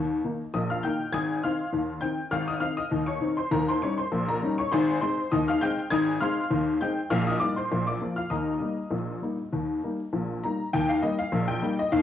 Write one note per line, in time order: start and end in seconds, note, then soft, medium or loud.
0.00 0.19 D#2 medium
0.00 0.19 D#3 medium
0.00 0.49 G5 medium
0.00 0.50 D#6 medium
0.00 0.49 G6 loud
0.24 0.40 D#3 soft
0.24 0.40 A#3 soft
0.24 0.41 D#4 soft
0.54 0.79 A#1 medium
0.54 0.79 A#2 medium
0.54 0.69 D#5 medium
0.54 0.69 D#6 medium
0.70 0.83 F5 medium
0.70 0.83 F6 medium
0.83 1.00 D#3 soft
0.83 1.00 A#3 soft
0.83 1.00 D#4 medium
0.83 1.11 G5 medium
0.83 1.07 G6 medium
1.12 1.38 G#1 medium
1.12 1.38 G#2 medium
1.12 1.41 G#5 medium
1.12 1.41 D#6 medium
1.12 1.36 G#6 medium
1.43 1.60 D#3 soft
1.43 1.60 C4 medium
1.43 1.60 D#4 medium
1.43 1.99 F5 medium
1.43 1.99 C6 medium
1.43 1.91 F6 medium
1.72 1.98 D#2 medium
1.72 1.98 D#3 medium
2.01 2.18 D#3 soft
2.01 2.18 C4 soft
2.01 2.19 D#4 soft
2.01 2.30 G5 medium
2.01 2.30 G6 medium
2.31 2.57 G#1 medium
2.31 2.57 G#2 medium
2.31 2.47 F5 medium
2.31 2.48 F6 loud
2.48 2.62 D#5 medium
2.48 2.62 D#6 medium
2.61 2.78 D#3 soft
2.61 2.78 C4 soft
2.61 2.78 D#4 medium
2.61 2.77 F5 medium
2.61 2.78 F6 medium
2.77 3.06 D#5 medium
2.77 3.02 D#6 medium
2.91 3.17 D#2 medium
2.91 3.17 D#3 medium
3.07 3.36 C#5 medium
3.07 3.36 C#6 medium
3.21 3.38 D#3 medium
3.21 3.38 C4 medium
3.21 3.38 D#4 medium
3.37 3.51 C5 medium
3.37 3.51 C6 medium
3.51 3.77 D#2 medium
3.51 3.77 D#3 medium
3.51 3.67 A#4 medium
3.51 3.68 A#5 medium
3.69 3.82 C5 medium
3.69 3.82 C6 medium
3.82 3.99 G3 medium
3.82 3.99 C#4 soft
3.82 4.00 D#4 medium
3.82 3.98 C#5 medium
3.82 3.98 C#6 medium
3.98 4.27 C5 medium
3.98 4.26 C6 medium
4.12 4.37 A#1 medium
4.12 4.37 A#2 medium
4.29 4.57 A#4 medium
4.29 4.52 A#5 medium
4.43 4.59 G3 medium
4.43 4.59 C#4 medium
4.43 4.59 D#4 medium
4.58 4.72 C#5 medium
4.58 4.72 C#6 medium
4.72 4.97 G#1 loud
4.72 4.97 G#2 medium
4.72 5.00 C5 medium
4.72 5.00 G#5 medium
4.72 4.96 C6 loud
5.01 5.18 G#3 medium
5.01 5.18 C4 medium
5.01 5.19 D#4 medium
5.01 5.30 C5 medium
5.01 5.30 C6 loud
5.31 5.57 D#2 medium
5.31 5.57 D#3 medium
5.31 5.47 D#5 medium
5.31 5.48 D#6 loud
5.48 5.61 F5 medium
5.48 5.61 F6 medium
5.61 5.78 G#3 medium
5.61 5.79 C4 medium
5.61 5.79 D#4 medium
5.61 5.90 G5 medium
5.61 5.90 G6 loud
5.90 6.16 G#1 medium
5.90 6.16 G#2 loud
5.90 6.19 G#5 medium
5.90 6.19 D#6 medium
5.90 6.15 G#6 loud
6.20 6.38 G#3 medium
6.20 6.38 C4 medium
6.20 6.38 D#4 medium
6.20 6.77 F5 medium
6.20 6.77 C6 medium
6.20 6.78 F6 medium
6.50 6.76 D#2 medium
6.50 6.76 D#3 medium
6.81 6.98 G#3 soft
6.81 6.98 C4 soft
6.81 6.98 D#4 medium
6.81 7.09 G5 medium
6.81 7.05 G6 medium
7.10 7.36 A#1 medium
7.10 7.36 A#2 medium
7.10 7.26 F5 medium
7.10 7.27 F6 loud
7.27 7.41 D#5 medium
7.27 7.41 D#6 medium
7.39 7.57 G3 soft
7.39 7.57 A#3 medium
7.39 7.58 D#4 medium
7.39 7.56 D5 medium
7.39 7.56 D6 medium
7.56 7.85 C5 medium
7.56 7.85 C6 medium
7.71 7.97 A#1 medium
7.71 7.97 A#2 medium
7.87 8.16 D5 medium
7.87 8.11 D6 medium
8.01 8.18 F3 soft
8.01 8.18 A#3 soft
8.01 8.19 F4 soft
8.16 8.31 F5 medium
8.16 8.31 F6 medium
8.30 8.57 D#2 medium
8.30 8.57 D#3 medium
8.30 10.09 D#5 medium
8.30 10.09 A#5 medium
8.30 10.08 D#6 medium
8.60 8.77 G3 soft
8.60 8.78 A#3 soft
8.60 8.78 D#4 soft
8.90 9.17 A#1 medium
8.90 9.17 A#2 medium
9.22 9.38 G3 soft
9.22 9.39 A#3 soft
9.22 9.39 D#4 soft
9.52 9.78 D#2 medium
9.52 9.78 D#3 medium
9.83 10.00 G3 soft
9.83 10.00 A#3 soft
9.83 10.00 D#4 soft
10.13 10.38 A#1 medium
10.13 10.39 A#2 medium
10.43 10.60 G3 soft
10.43 10.61 A#3 soft
10.43 10.61 D#4 soft
10.43 10.67 A#5 medium
10.73 10.99 D#2 medium
10.73 10.99 D#3 loud
10.73 10.89 G5 loud
10.89 11.03 F5 medium
11.02 11.19 G3 medium
11.02 11.20 A#3 medium
11.02 11.20 D#4 medium
11.02 11.19 D#5 medium
11.19 11.43 F5 medium
11.32 11.58 A#1 medium
11.32 11.58 A#2 medium
11.48 11.77 G5 medium
11.62 11.79 G3 medium
11.62 11.79 A#3 medium
11.62 11.79 D#4 medium
11.79 11.93 D#5 medium
11.92 12.02 D#2 medium
11.92 12.02 D#3 medium
11.92 12.02 F5 loud